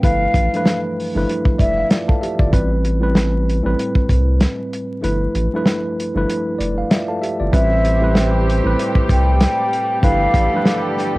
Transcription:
0.01 sub bass G1, tine electric piano G2 F3 A3 E4 B4, flute F5, kick, closed hi-hat
0.34 sub bass A1, kick, closed hi-hat
0.53 tine electric piano G2 E3 F3 A3 B4, closed hi-hat
0.66 snare, closed hi-hat
1.00 open hi-hat
1.14 sub bass G1, tine electric piano G2 F3 A3 E4 B4
1.29 closed hi-hat
1.45 kick
1.58 sub bass F1, tine electric piano D5, flute E5, kick, closed hi-hat
1.78 tine electric piano F5
1.90 tine electric piano F4 D5 E5, snare, closed hi-hat
2.08 tine electric piano A4 F5 A5, kick
2.21 tine electric piano G4 E5, closed hi-hat
2.39 sub bass G1, tine electric piano F4 D5, kick
2.50 sub bass A1, tine electric piano A2 G3 C4 B4, kick, closed hi-hat
2.85 closed hi-hat
3.00 tine electric piano A2 G3 C4 B4
3.15 snare, closed hi-hat
3.50 closed hi-hat
3.63 sub bass A1, tine electric piano A2 G3 C4 B4
3.79 closed hi-hat
3.95 sub bass C2, kick
4.09 sub bass C2, kick, closed hi-hat
4.41 snare, closed hi-hat
4.73 closed hi-hat
5.01 sub bass G1, tine electric piano G2 F3 A3 E4 B4, closed hi-hat
5.35 sub bass A1, closed hi-hat
5.53 tine electric piano G2 F3 A3 E4 B4
5.66 snare, closed hi-hat
6.00 closed hi-hat
6.14 sub bass G1, tine electric piano G2 F3 A3 E4 B4
6.30 closed hi-hat
6.59 sub bass F1, tine electric piano D5, closed hi-hat
6.78 tine electric piano F5
6.90 tine electric piano F4 D5 E5, snare, closed hi-hat
7.08 tine electric piano A4 F5 A5
7.22 tine electric piano G4 E5, closed hi-hat
7.40 sub bass G1, tine electric piano F4 D5
7.51 sub bass A1, tine electric piano A2 G3 C4 B4, string section C3 G3 A3 G4, horn section G3 E4 C5, flute E5, kick, closed hi-hat
7.85 closed hi-hat
8.01 tine electric piano A2 G3 C4 B4
8.15 snare, closed hi-hat
8.50 closed hi-hat
8.64 sub bass A1, tine electric piano A2 G3 C4 B4
8.79 closed hi-hat
8.95 sub bass C2, kick
9.09 sub bass C2, flute G5, kick, closed hi-hat
9.41 snare, closed hi-hat
9.73 closed hi-hat
10.01 sub bass G1, tine electric piano G2 F3 A3 E4 B4, string section D3 G4, horn section B3 A4 D5, flute F5, kick, closed hi-hat
10.34 sub bass A1, kick, closed hi-hat
10.53 tine electric piano G2 E3 F3 A3 B4
10.65 snare, closed hi-hat
10.98 snare, closed hi-hat
11.15 sub bass G1, tine electric piano G2

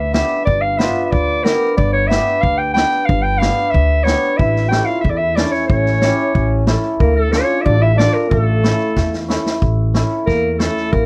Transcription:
Already playing: upright bass D2, clarinet E5
0.13 hammered dulcimer B3 D4 G4, clarinet E5, snare
0.45 upright bass G1, clarinet D5, kick
0.61 clarinet F5
0.78 hammered dulcimer B3 D4 F4, clarinet E5, snare
1.05 clarinet E5
1.11 upright bass D2, clarinet D5, kick
1.44 hammered dulcimer B3 D4 G4, clarinet A#4, snare
1.77 upright bass G1, clarinet D5, kick
1.93 clarinet C#5
2.08 hammered dulcimer B3 D4, clarinet E5, snare
2.12 hammered dulcimer G4
2.41 upright bass D2, clarinet F5, kick
2.58 clarinet G5
2.74 hammered dulcimer B3 D4 G4, clarinet G5, snare
3.05 upright bass G1, clarinet F5, kick
3.22 clarinet G5
3.38 hammered dulcimer B3 D4 G4, clarinet F5
3.42 snare
3.70 clarinet E5, kick
3.74 upright bass D2
4.03 hammered dulcimer B3 D4 G4, clarinet C#5, snare
4.37 upright bass A1, trombone E4, clarinet E5, kick
4.56 snare
4.69 hammered dulcimer C#4 E4, trombone G4, clarinet G5, snare
4.73 hammered dulcimer A4
4.85 trombone F4, clarinet F5
5.01 upright bass E2, clarinet E5, kick
5.06 trombone E4, clarinet D5
5.17 trombone E4, clarinet E5
5.36 hammered dulcimer C#4 E4 A4, trombone D4, clarinet D5, snare
5.52 trombone C#4, clarinet C#5, snare
5.67 upright bass A1, trombone C#4, clarinet C#5, kick
5.86 snare
6.02 hammered dulcimer C#4 E4 G4, snare
6.35 upright bass A1, trombone C#4, kick
6.67 hammered dulcimer C#4 E4 A4, snare
7.00 upright bass D2, trombone A#3, clarinet A#4, kick
7.16 trombone A3, clarinet A4
7.32 trombone C#4, hammered dulcimer D4 F4 A4, clarinet C#5, snare
7.61 trombone E4, clarinet D5 E5
7.66 upright bass A1, trombone D4, kick
7.80 trombone E4, clarinet E5
7.95 trombone D4, hammered dulcimer D4 F4, clarinet D5, snare
7.99 hammered dulcimer A4
8.14 clarinet A#4
8.29 upright bass A1, trombone A3, clarinet A#4, kick
8.41 clarinet A4
8.63 hammered dulcimer C#4 E4 A4, snare
8.96 upright bass E2, kick, snare
9.13 snare
9.28 hammered dulcimer C#4 E4 A4, snare
9.46 snare
9.62 upright bass A1, kick
9.94 hammered dulcimer C#4 E4 A4, snare
10.26 upright bass E2, trombone A#3, clarinet A#4, kick, snare
10.52 trombone A#3, clarinet A#4
10.57 trombone A3, hammered dulcimer C#4 E4 A4, clarinet A4, snare
10.77 snare
10.92 upright bass A1, trombone A#3, clarinet A#4, kick

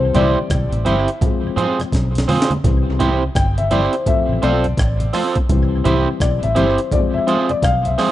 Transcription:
Already playing: fingered electric bass C2, grand piano E3 G3 C4 C5
0.00 tonewheel organ C3
0.14 fingered electric bass C2, tonewheel organ E3 G3 C4, clean electric guitar C4 E4 G4 C5, grand piano D5, closed hi-hat, high conga, low conga
0.36 tonewheel organ C3
0.50 fingered electric bass B1, kick, cross-stick, closed hi-hat, high conga
0.72 fingered electric bass A1, tonewheel organ C3, closed hi-hat
0.85 fingered electric bass G1, tonewheel organ E3 G3 C4, clean electric guitar C4 E4 G4 C5, grand piano E5, closed hi-hat, high conga
1.08 closed hi-hat
1.21 grand piano F3 G#3 C4, kick, closed hi-hat, low conga
1.44 tonewheel organ F2 C3
1.56 tonewheel organ F3 G#3 C4, clean electric guitar C4 F4 G#4 C5, closed hi-hat, low conga
1.79 tonewheel organ F2 C3, cross-stick, closed hi-hat
1.92 fingered electric bass B1, kick, snare, closed hi-hat
2.15 tonewheel organ F2 C3, snare, closed hi-hat
2.28 tonewheel organ F3 G#3 C4, clean electric guitar C4 F4 G#4 C5, mid tom, open hi-hat, high conga
2.42 snare
2.50 tonewheel organ G#3 C4, closed hi-hat, high conga
2.64 fingered electric bass C2, grand piano E3 G3 C4, kick, closed hi-hat, low conga
2.86 tonewheel organ C3
2.99 tonewheel organ E3 G3 C4, clean electric guitar C4 E4 G4 C5, closed hi-hat, low conga
3.22 tonewheel organ C3
3.35 fingered electric bass G1, grand piano G5, kick, cross-stick, closed hi-hat
3.58 tonewheel organ C3, grand piano E5, closed hi-hat
3.71 tonewheel organ E3 G3 C4, clean electric guitar C4 E4 G4 C5, grand piano D5, closed hi-hat, high conga
3.93 grand piano C5, closed hi-hat
4.06 grand piano F3 A3 C4 E5, kick, closed hi-hat, low conga
4.29 fingered electric bass A1, tonewheel organ F2 C3
4.42 fingered electric bass B1, tonewheel organ F3 A3 C4, clean electric guitar C4 F4 A4 C5, grand piano D5, closed hi-hat
4.64 tonewheel organ F2 C3, closed hi-hat
4.77 fingered electric bass A1, kick, cross-stick, closed hi-hat
5.00 tonewheel organ F2 C3, closed hi-hat
5.13 tonewheel organ F3 A3 C4, clean electric guitar C4 F4 A4 C5, grand piano C5, cross-stick, open hi-hat
5.35 tonewheel organ A3 C4, kick, closed hi-hat
5.49 fingered electric bass C2, grand piano E3 G3 C4, kick, closed hi-hat, low conga
5.71 tonewheel organ C3
5.84 fingered electric bass C2, tonewheel organ E3 G3 C4, clean electric guitar C4 E4 G4 C5, closed hi-hat, low conga
6.07 tonewheel organ C3
6.20 fingered electric bass B1, grand piano D5, kick, cross-stick, closed hi-hat
6.43 fingered electric bass A1, tonewheel organ C3, grand piano E5, closed hi-hat
6.55 fingered electric bass G1, tonewheel organ E3 G3 C4, clean electric guitar C4 E4 G4 C5, grand piano C5, closed hi-hat, high conga
6.78 closed hi-hat
6.92 grand piano F3 G#3 C4 D5, kick, closed hi-hat, low conga
7.14 tonewheel organ F2 C3, grand piano E5
7.27 tonewheel organ F3 G#3 C4, clean electric guitar C4 F4 G#4 C5, closed hi-hat
7.49 tonewheel organ F2 C3, grand piano D5, closed hi-hat
7.63 fingered electric bass B1, grand piano F5, kick, cross-stick, closed hi-hat
7.85 tonewheel organ F2 C3, grand piano E5, closed hi-hat
7.98 tonewheel organ F3 G#3 C4, clean electric guitar C4 F4 G#4 C5, cross-stick, open hi-hat

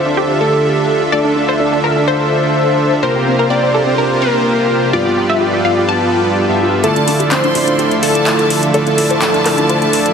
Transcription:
Already playing: supersaw synth D3 D4 F4 A4 E5, digital synth lead C5
0.06 synth arpeggio sound D4
0.17 synth arpeggio sound G4
0.41 digital synth lead A4
1.12 supersaw synth D3 D4 F4 A4 E5, digital synth lead A4, synth arpeggio sound D5
1.25 synth arpeggio sound D4
1.36 synth arpeggio sound D4
1.49 synth arpeggio sound C5
1.60 synth arpeggio sound D4
1.72 synth arpeggio sound D4
1.84 supersaw synth D3 D4 F4 A4 E5, synth arpeggio sound A#4
1.96 synth arpeggio sound D4
2.08 synth arpeggio sound C5
3.03 supersaw synth C3 A#3 C4 F4 G4 A#4 C5, digital synth lead A#4, synth arpeggio sound C5
3.15 synth arpeggio sound C4
3.27 synth arpeggio sound C4
3.39 synth arpeggio sound A#4
3.50 synth arpeggio sound C4, digital synth lead D5
3.63 synth arpeggio sound C4
3.74 supersaw synth C3 A#3 F4 G4 C5, synth arpeggio sound A4
3.87 synth arpeggio sound C4
3.98 synth arpeggio sound A#4
4.22 digital synth lead A#4
4.93 supersaw synth G2 G3 B3 F4 G4 A4 B4 D5, digital synth lead F4, synth arpeggio sound D5
5.06 synth arpeggio sound G4
5.17 synth arpeggio sound G4
5.29 synth arpeggio sound E5
5.41 synth arpeggio sound G4
5.53 synth arpeggio sound G4
5.65 supersaw synth G2 B3 F4 G4 D5, synth arpeggio sound F5
5.77 synth arpeggio sound G4
5.89 synth arpeggio sound A5
6.49 supersaw synth G2 B3 F4 G4 E5
6.84 supersaw synth D3 F3 A3 D4 E4 F4 A4 D5 E5, digital synth lead A4, synth arpeggio sound A4, violin section A5, closed hi-hat
6.96 synth arpeggio sound D4, closed hi-hat
7.08 synth arpeggio sound D4, open hi-hat
7.20 synth arpeggio sound G4, closed hi-hat
7.31 synth arpeggio sound D4, digital synth lead C5, violin section C6, clap, closed hi-hat
7.44 synth arpeggio sound D4, closed hi-hat
7.55 supersaw synth D3 A3 E4 F4 D5, synth arpeggio sound F4, open hi-hat
7.68 synth arpeggio sound D4, closed hi-hat
7.79 synth arpeggio sound G4, closed hi-hat
7.91 closed hi-hat
8.03 digital synth lead A4, violin section A5, open hi-hat
8.15 closed hi-hat
8.27 clap, closed hi-hat
8.39 closed hi-hat
8.50 open hi-hat
8.63 closed hi-hat
8.74 supersaw synth D3 A3 E4 F4 D5, digital synth lead A4, synth arpeggio sound D5, violin section A5, closed hi-hat
8.87 synth arpeggio sound D4, closed hi-hat
8.98 synth arpeggio sound D4, open hi-hat
9.10 synth arpeggio sound C5, closed hi-hat
9.22 synth arpeggio sound D4, clap, closed hi-hat
9.34 synth arpeggio sound D4, closed hi-hat
9.46 supersaw synth D3 A3 E4 F4 D5, synth arpeggio sound A#4, clap, open hi-hat
9.58 synth arpeggio sound D4, closed hi-hat
9.69 synth arpeggio sound C5, closed hi-hat
9.82 closed hi-hat
9.93 open hi-hat
10.06 closed hi-hat

